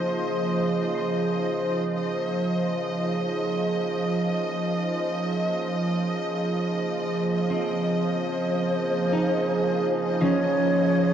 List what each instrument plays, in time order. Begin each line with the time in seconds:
Already playing: harmonium C#3, analog synth pad F3 A#3 D#4 G#4 C5, harp G#4, violin section D#5
0.95 harp C6
5.32 harp D#5
7.50 harp C4
8.04 alto flute C5
8.38 analog synth pad A#3
8.79 analog synth pad G#4
9.12 harp D#4
9.44 analog synth pad D#4
10.21 harp F3 C#4, alto flute C#5